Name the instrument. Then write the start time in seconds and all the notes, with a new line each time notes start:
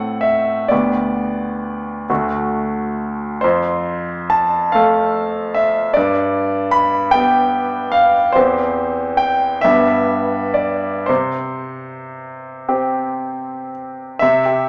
grand piano
Already playing: A2 C4 A4 F#5
0.21 E5
0.68 D2 B3 G4 D5
2.10 D2 A3 F#4
3.41 F2 C5
4.30 A5
4.72 A3 A4 F5
5.54 E5
5.94 G2 D5
6.71 B5
7.11 B3 G4 G5
7.92 F5
8.32 E2 C4 G4 C5
9.17 G5
9.61 G2 B3 G4 E5
10.54 D5
11.06 C3 C5
12.68 C4 G4
14.19 C3 E5
14.46 G4